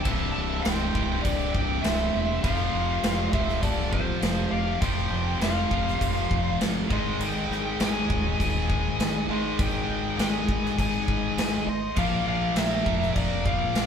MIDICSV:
0, 0, Header, 1, 6, 480
1, 0, Start_track
1, 0, Tempo, 595238
1, 45, Time_signature, 4, 2, 24, 8
1, 11178, End_track
2, 0, Start_track
2, 0, Title_t, "Lead electric guitar"
2, 0, Program_c, 0, 29
2, 25, Note_on_c, 0, 81, 108
2, 248, Note_off_c, 0, 81, 0
2, 258, Note_on_c, 0, 81, 103
2, 493, Note_off_c, 0, 81, 0
2, 496, Note_on_c, 0, 79, 92
2, 979, Note_on_c, 0, 74, 97
2, 1006, Note_off_c, 0, 79, 0
2, 1230, Note_on_c, 0, 79, 96
2, 1240, Note_off_c, 0, 74, 0
2, 1466, Note_on_c, 0, 76, 93
2, 1486, Note_off_c, 0, 79, 0
2, 1925, Note_off_c, 0, 76, 0
2, 1950, Note_on_c, 0, 77, 98
2, 2647, Note_off_c, 0, 77, 0
2, 2674, Note_on_c, 0, 76, 90
2, 2904, Note_off_c, 0, 76, 0
2, 2913, Note_on_c, 0, 74, 95
2, 3148, Note_on_c, 0, 72, 91
2, 3168, Note_off_c, 0, 74, 0
2, 3635, Note_on_c, 0, 77, 86
2, 3654, Note_off_c, 0, 72, 0
2, 3865, Note_off_c, 0, 77, 0
2, 3878, Note_on_c, 0, 79, 101
2, 4370, Note_on_c, 0, 77, 79
2, 4379, Note_off_c, 0, 79, 0
2, 5299, Note_off_c, 0, 77, 0
2, 5586, Note_on_c, 0, 75, 79
2, 5821, Note_on_c, 0, 79, 105
2, 5827, Note_off_c, 0, 75, 0
2, 6265, Note_off_c, 0, 79, 0
2, 6302, Note_on_c, 0, 80, 98
2, 6772, Note_off_c, 0, 80, 0
2, 6782, Note_on_c, 0, 80, 102
2, 7501, Note_on_c, 0, 75, 92
2, 7520, Note_off_c, 0, 80, 0
2, 7721, Note_off_c, 0, 75, 0
2, 7739, Note_on_c, 0, 79, 107
2, 8229, Note_off_c, 0, 79, 0
2, 8232, Note_on_c, 0, 80, 98
2, 8687, Note_off_c, 0, 80, 0
2, 8696, Note_on_c, 0, 80, 104
2, 9411, Note_on_c, 0, 75, 86
2, 9436, Note_off_c, 0, 80, 0
2, 9644, Note_off_c, 0, 75, 0
2, 9647, Note_on_c, 0, 77, 99
2, 9883, Note_off_c, 0, 77, 0
2, 9893, Note_on_c, 0, 77, 93
2, 10115, Note_off_c, 0, 77, 0
2, 10135, Note_on_c, 0, 76, 85
2, 10580, Note_off_c, 0, 76, 0
2, 10606, Note_on_c, 0, 74, 92
2, 10831, Note_off_c, 0, 74, 0
2, 10858, Note_on_c, 0, 77, 93
2, 11178, Note_off_c, 0, 77, 0
2, 11178, End_track
3, 0, Start_track
3, 0, Title_t, "Lead electric guitar"
3, 0, Program_c, 1, 29
3, 38, Note_on_c, 1, 76, 90
3, 263, Note_off_c, 1, 76, 0
3, 272, Note_on_c, 1, 76, 80
3, 502, Note_off_c, 1, 76, 0
3, 515, Note_on_c, 1, 72, 81
3, 968, Note_off_c, 1, 72, 0
3, 1003, Note_on_c, 1, 67, 84
3, 1228, Note_off_c, 1, 67, 0
3, 1236, Note_on_c, 1, 74, 81
3, 1464, Note_off_c, 1, 74, 0
3, 1487, Note_on_c, 1, 72, 85
3, 1935, Note_off_c, 1, 72, 0
3, 1964, Note_on_c, 1, 72, 88
3, 2654, Note_off_c, 1, 72, 0
3, 2681, Note_on_c, 1, 72, 77
3, 2908, Note_off_c, 1, 72, 0
3, 2930, Note_on_c, 1, 69, 79
3, 3153, Note_off_c, 1, 69, 0
3, 3166, Note_on_c, 1, 65, 75
3, 3616, Note_off_c, 1, 65, 0
3, 3636, Note_on_c, 1, 74, 74
3, 3866, Note_off_c, 1, 74, 0
3, 3887, Note_on_c, 1, 72, 81
3, 4337, Note_off_c, 1, 72, 0
3, 4365, Note_on_c, 1, 72, 69
3, 5297, Note_off_c, 1, 72, 0
3, 5585, Note_on_c, 1, 72, 76
3, 5802, Note_off_c, 1, 72, 0
3, 5827, Note_on_c, 1, 75, 95
3, 6268, Note_off_c, 1, 75, 0
3, 6314, Note_on_c, 1, 75, 88
3, 6752, Note_off_c, 1, 75, 0
3, 6778, Note_on_c, 1, 75, 91
3, 7464, Note_off_c, 1, 75, 0
3, 7505, Note_on_c, 1, 72, 76
3, 7723, Note_off_c, 1, 72, 0
3, 7756, Note_on_c, 1, 75, 89
3, 8193, Note_off_c, 1, 75, 0
3, 8225, Note_on_c, 1, 75, 89
3, 8667, Note_off_c, 1, 75, 0
3, 8711, Note_on_c, 1, 75, 88
3, 9389, Note_off_c, 1, 75, 0
3, 9421, Note_on_c, 1, 72, 77
3, 9640, Note_off_c, 1, 72, 0
3, 9668, Note_on_c, 1, 74, 90
3, 9884, Note_off_c, 1, 74, 0
3, 9904, Note_on_c, 1, 74, 74
3, 10121, Note_off_c, 1, 74, 0
3, 10148, Note_on_c, 1, 70, 81
3, 10587, Note_off_c, 1, 70, 0
3, 10616, Note_on_c, 1, 70, 81
3, 10836, Note_off_c, 1, 70, 0
3, 10846, Note_on_c, 1, 74, 82
3, 11178, Note_off_c, 1, 74, 0
3, 11178, End_track
4, 0, Start_track
4, 0, Title_t, "Distorted electric guitar"
4, 0, Program_c, 2, 30
4, 38, Note_on_c, 2, 36, 89
4, 52, Note_on_c, 2, 43, 101
4, 60, Note_on_c, 2, 48, 94
4, 748, Note_off_c, 2, 36, 0
4, 753, Note_off_c, 2, 48, 0
4, 755, Note_off_c, 2, 43, 0
4, 763, Note_on_c, 2, 48, 86
4, 776, Note_on_c, 2, 43, 73
4, 786, Note_on_c, 2, 36, 73
4, 1951, Note_off_c, 2, 48, 0
4, 1958, Note_off_c, 2, 43, 0
4, 1959, Note_off_c, 2, 36, 0
4, 1962, Note_on_c, 2, 41, 83
4, 1975, Note_on_c, 2, 48, 98
4, 1984, Note_on_c, 2, 53, 104
4, 2678, Note_off_c, 2, 48, 0
4, 2679, Note_off_c, 2, 53, 0
4, 2682, Note_on_c, 2, 53, 77
4, 2695, Note_on_c, 2, 48, 73
4, 2699, Note_off_c, 2, 41, 0
4, 3872, Note_off_c, 2, 53, 0
4, 3879, Note_off_c, 2, 48, 0
4, 3882, Note_on_c, 2, 41, 86
4, 3895, Note_on_c, 2, 48, 104
4, 3901, Note_on_c, 2, 53, 96
4, 4592, Note_off_c, 2, 53, 0
4, 4593, Note_off_c, 2, 41, 0
4, 4599, Note_off_c, 2, 48, 0
4, 4602, Note_on_c, 2, 53, 77
4, 4612, Note_on_c, 2, 48, 81
4, 4621, Note_on_c, 2, 41, 74
4, 5551, Note_off_c, 2, 41, 0
4, 5553, Note_off_c, 2, 53, 0
4, 5554, Note_on_c, 2, 44, 87
4, 5558, Note_off_c, 2, 48, 0
4, 5566, Note_on_c, 2, 51, 89
4, 5577, Note_on_c, 2, 56, 97
4, 6275, Note_off_c, 2, 51, 0
4, 6276, Note_off_c, 2, 44, 0
4, 6279, Note_on_c, 2, 44, 79
4, 6288, Note_on_c, 2, 51, 85
4, 6295, Note_off_c, 2, 56, 0
4, 6298, Note_on_c, 2, 56, 93
4, 7472, Note_off_c, 2, 44, 0
4, 7477, Note_off_c, 2, 51, 0
4, 7482, Note_off_c, 2, 56, 0
4, 7490, Note_on_c, 2, 44, 92
4, 7501, Note_on_c, 2, 51, 91
4, 7514, Note_on_c, 2, 56, 96
4, 8193, Note_off_c, 2, 44, 0
4, 8203, Note_off_c, 2, 51, 0
4, 8203, Note_on_c, 2, 44, 81
4, 8209, Note_off_c, 2, 56, 0
4, 8216, Note_on_c, 2, 51, 77
4, 8227, Note_on_c, 2, 56, 90
4, 9393, Note_off_c, 2, 44, 0
4, 9400, Note_off_c, 2, 51, 0
4, 9405, Note_off_c, 2, 56, 0
4, 9646, Note_on_c, 2, 46, 92
4, 9659, Note_on_c, 2, 53, 93
4, 9666, Note_on_c, 2, 58, 102
4, 10354, Note_off_c, 2, 46, 0
4, 10361, Note_off_c, 2, 53, 0
4, 10364, Note_off_c, 2, 58, 0
4, 10373, Note_on_c, 2, 58, 79
4, 10382, Note_on_c, 2, 53, 79
4, 10394, Note_on_c, 2, 46, 67
4, 11178, Note_off_c, 2, 46, 0
4, 11178, Note_off_c, 2, 53, 0
4, 11178, Note_off_c, 2, 58, 0
4, 11178, End_track
5, 0, Start_track
5, 0, Title_t, "Fingered electric bass"
5, 0, Program_c, 3, 33
5, 45, Note_on_c, 3, 24, 90
5, 238, Note_off_c, 3, 24, 0
5, 288, Note_on_c, 3, 24, 84
5, 480, Note_off_c, 3, 24, 0
5, 521, Note_on_c, 3, 24, 87
5, 716, Note_off_c, 3, 24, 0
5, 762, Note_on_c, 3, 24, 91
5, 957, Note_off_c, 3, 24, 0
5, 1008, Note_on_c, 3, 24, 91
5, 1201, Note_off_c, 3, 24, 0
5, 1244, Note_on_c, 3, 24, 86
5, 1438, Note_off_c, 3, 24, 0
5, 1484, Note_on_c, 3, 24, 90
5, 1678, Note_off_c, 3, 24, 0
5, 1730, Note_on_c, 3, 28, 91
5, 1922, Note_off_c, 3, 28, 0
5, 1966, Note_on_c, 3, 29, 100
5, 2160, Note_off_c, 3, 29, 0
5, 2203, Note_on_c, 3, 29, 86
5, 2398, Note_off_c, 3, 29, 0
5, 2445, Note_on_c, 3, 29, 86
5, 2639, Note_off_c, 3, 29, 0
5, 2686, Note_on_c, 3, 24, 95
5, 2880, Note_off_c, 3, 24, 0
5, 2925, Note_on_c, 3, 24, 89
5, 3313, Note_off_c, 3, 24, 0
5, 3397, Note_on_c, 3, 29, 92
5, 3595, Note_off_c, 3, 29, 0
5, 3633, Note_on_c, 3, 29, 88
5, 3833, Note_off_c, 3, 29, 0
5, 3884, Note_on_c, 3, 29, 91
5, 4080, Note_off_c, 3, 29, 0
5, 4114, Note_on_c, 3, 29, 86
5, 4314, Note_off_c, 3, 29, 0
5, 4352, Note_on_c, 3, 29, 89
5, 4553, Note_off_c, 3, 29, 0
5, 4604, Note_on_c, 3, 29, 92
5, 4800, Note_off_c, 3, 29, 0
5, 4847, Note_on_c, 3, 29, 96
5, 5042, Note_off_c, 3, 29, 0
5, 5086, Note_on_c, 3, 29, 92
5, 5281, Note_off_c, 3, 29, 0
5, 5330, Note_on_c, 3, 31, 89
5, 5524, Note_off_c, 3, 31, 0
5, 5569, Note_on_c, 3, 32, 93
5, 5763, Note_off_c, 3, 32, 0
5, 5800, Note_on_c, 3, 32, 93
5, 5998, Note_off_c, 3, 32, 0
5, 6042, Note_on_c, 3, 32, 84
5, 6240, Note_off_c, 3, 32, 0
5, 6290, Note_on_c, 3, 32, 88
5, 6484, Note_off_c, 3, 32, 0
5, 6529, Note_on_c, 3, 27, 96
5, 6724, Note_off_c, 3, 27, 0
5, 6771, Note_on_c, 3, 27, 92
5, 7158, Note_off_c, 3, 27, 0
5, 7245, Note_on_c, 3, 32, 93
5, 7442, Note_off_c, 3, 32, 0
5, 7483, Note_on_c, 3, 32, 88
5, 7681, Note_off_c, 3, 32, 0
5, 7732, Note_on_c, 3, 32, 94
5, 7926, Note_off_c, 3, 32, 0
5, 7972, Note_on_c, 3, 32, 83
5, 8166, Note_off_c, 3, 32, 0
5, 8210, Note_on_c, 3, 32, 86
5, 8405, Note_off_c, 3, 32, 0
5, 8452, Note_on_c, 3, 32, 93
5, 8646, Note_off_c, 3, 32, 0
5, 8697, Note_on_c, 3, 32, 92
5, 8888, Note_off_c, 3, 32, 0
5, 8935, Note_on_c, 3, 32, 91
5, 9127, Note_off_c, 3, 32, 0
5, 9164, Note_on_c, 3, 32, 89
5, 9361, Note_off_c, 3, 32, 0
5, 9408, Note_on_c, 3, 32, 92
5, 9603, Note_off_c, 3, 32, 0
5, 9648, Note_on_c, 3, 34, 97
5, 9843, Note_off_c, 3, 34, 0
5, 9887, Note_on_c, 3, 34, 85
5, 10082, Note_off_c, 3, 34, 0
5, 10123, Note_on_c, 3, 34, 86
5, 10320, Note_off_c, 3, 34, 0
5, 10372, Note_on_c, 3, 29, 93
5, 10565, Note_off_c, 3, 29, 0
5, 10608, Note_on_c, 3, 29, 98
5, 10994, Note_off_c, 3, 29, 0
5, 11081, Note_on_c, 3, 34, 87
5, 11178, Note_off_c, 3, 34, 0
5, 11178, End_track
6, 0, Start_track
6, 0, Title_t, "Drums"
6, 41, Note_on_c, 9, 49, 65
6, 43, Note_on_c, 9, 36, 112
6, 122, Note_off_c, 9, 49, 0
6, 124, Note_off_c, 9, 36, 0
6, 524, Note_on_c, 9, 49, 65
6, 531, Note_on_c, 9, 38, 119
6, 605, Note_off_c, 9, 49, 0
6, 611, Note_off_c, 9, 38, 0
6, 767, Note_on_c, 9, 36, 89
6, 847, Note_off_c, 9, 36, 0
6, 1006, Note_on_c, 9, 49, 63
6, 1007, Note_on_c, 9, 36, 83
6, 1087, Note_off_c, 9, 49, 0
6, 1088, Note_off_c, 9, 36, 0
6, 1247, Note_on_c, 9, 36, 83
6, 1327, Note_off_c, 9, 36, 0
6, 1485, Note_on_c, 9, 49, 66
6, 1492, Note_on_c, 9, 38, 113
6, 1566, Note_off_c, 9, 49, 0
6, 1572, Note_off_c, 9, 38, 0
6, 1968, Note_on_c, 9, 36, 116
6, 1970, Note_on_c, 9, 49, 65
6, 2049, Note_off_c, 9, 36, 0
6, 2050, Note_off_c, 9, 49, 0
6, 2447, Note_on_c, 9, 49, 61
6, 2453, Note_on_c, 9, 38, 117
6, 2527, Note_off_c, 9, 49, 0
6, 2534, Note_off_c, 9, 38, 0
6, 2687, Note_on_c, 9, 36, 96
6, 2768, Note_off_c, 9, 36, 0
6, 2811, Note_on_c, 9, 38, 34
6, 2892, Note_off_c, 9, 38, 0
6, 2926, Note_on_c, 9, 36, 87
6, 2927, Note_on_c, 9, 49, 57
6, 3007, Note_off_c, 9, 36, 0
6, 3008, Note_off_c, 9, 49, 0
6, 3166, Note_on_c, 9, 36, 85
6, 3247, Note_off_c, 9, 36, 0
6, 3406, Note_on_c, 9, 49, 60
6, 3412, Note_on_c, 9, 38, 107
6, 3486, Note_off_c, 9, 49, 0
6, 3493, Note_off_c, 9, 38, 0
6, 3886, Note_on_c, 9, 36, 114
6, 3887, Note_on_c, 9, 49, 64
6, 3967, Note_off_c, 9, 36, 0
6, 3967, Note_off_c, 9, 49, 0
6, 4365, Note_on_c, 9, 49, 61
6, 4372, Note_on_c, 9, 38, 110
6, 4446, Note_off_c, 9, 49, 0
6, 4452, Note_off_c, 9, 38, 0
6, 4606, Note_on_c, 9, 36, 90
6, 4687, Note_off_c, 9, 36, 0
6, 4739, Note_on_c, 9, 38, 34
6, 4819, Note_off_c, 9, 38, 0
6, 4848, Note_on_c, 9, 36, 86
6, 4853, Note_on_c, 9, 49, 63
6, 4929, Note_off_c, 9, 36, 0
6, 4933, Note_off_c, 9, 49, 0
6, 5088, Note_on_c, 9, 36, 88
6, 5168, Note_off_c, 9, 36, 0
6, 5329, Note_on_c, 9, 49, 64
6, 5335, Note_on_c, 9, 38, 109
6, 5410, Note_off_c, 9, 49, 0
6, 5416, Note_off_c, 9, 38, 0
6, 5568, Note_on_c, 9, 36, 110
6, 5649, Note_off_c, 9, 36, 0
6, 5810, Note_on_c, 9, 49, 63
6, 5891, Note_off_c, 9, 49, 0
6, 6061, Note_on_c, 9, 38, 34
6, 6142, Note_off_c, 9, 38, 0
6, 6289, Note_on_c, 9, 49, 60
6, 6296, Note_on_c, 9, 38, 112
6, 6370, Note_off_c, 9, 49, 0
6, 6376, Note_off_c, 9, 38, 0
6, 6532, Note_on_c, 9, 36, 95
6, 6613, Note_off_c, 9, 36, 0
6, 6774, Note_on_c, 9, 36, 87
6, 6782, Note_on_c, 9, 49, 57
6, 6855, Note_off_c, 9, 36, 0
6, 6862, Note_off_c, 9, 49, 0
6, 7013, Note_on_c, 9, 36, 88
6, 7094, Note_off_c, 9, 36, 0
6, 7256, Note_on_c, 9, 49, 60
6, 7263, Note_on_c, 9, 38, 112
6, 7337, Note_off_c, 9, 49, 0
6, 7343, Note_off_c, 9, 38, 0
6, 7735, Note_on_c, 9, 36, 121
6, 7737, Note_on_c, 9, 49, 60
6, 7815, Note_off_c, 9, 36, 0
6, 7817, Note_off_c, 9, 49, 0
6, 8219, Note_on_c, 9, 49, 62
6, 8225, Note_on_c, 9, 38, 112
6, 8299, Note_off_c, 9, 49, 0
6, 8306, Note_off_c, 9, 38, 0
6, 8456, Note_on_c, 9, 36, 93
6, 8537, Note_off_c, 9, 36, 0
6, 8590, Note_on_c, 9, 38, 33
6, 8671, Note_off_c, 9, 38, 0
6, 8697, Note_on_c, 9, 36, 85
6, 8701, Note_on_c, 9, 49, 64
6, 8778, Note_off_c, 9, 36, 0
6, 8782, Note_off_c, 9, 49, 0
6, 8936, Note_on_c, 9, 36, 85
6, 9017, Note_off_c, 9, 36, 0
6, 9178, Note_on_c, 9, 49, 68
6, 9184, Note_on_c, 9, 38, 115
6, 9258, Note_off_c, 9, 49, 0
6, 9265, Note_off_c, 9, 38, 0
6, 9648, Note_on_c, 9, 49, 64
6, 9653, Note_on_c, 9, 36, 116
6, 9728, Note_off_c, 9, 49, 0
6, 9733, Note_off_c, 9, 36, 0
6, 10128, Note_on_c, 9, 49, 64
6, 10134, Note_on_c, 9, 38, 118
6, 10208, Note_off_c, 9, 49, 0
6, 10215, Note_off_c, 9, 38, 0
6, 10372, Note_on_c, 9, 36, 88
6, 10452, Note_off_c, 9, 36, 0
6, 10502, Note_on_c, 9, 38, 35
6, 10583, Note_off_c, 9, 38, 0
6, 10610, Note_on_c, 9, 49, 60
6, 10611, Note_on_c, 9, 36, 88
6, 10690, Note_off_c, 9, 49, 0
6, 10692, Note_off_c, 9, 36, 0
6, 10851, Note_on_c, 9, 36, 90
6, 10931, Note_off_c, 9, 36, 0
6, 11090, Note_on_c, 9, 49, 59
6, 11096, Note_on_c, 9, 38, 113
6, 11170, Note_off_c, 9, 49, 0
6, 11177, Note_off_c, 9, 38, 0
6, 11178, End_track
0, 0, End_of_file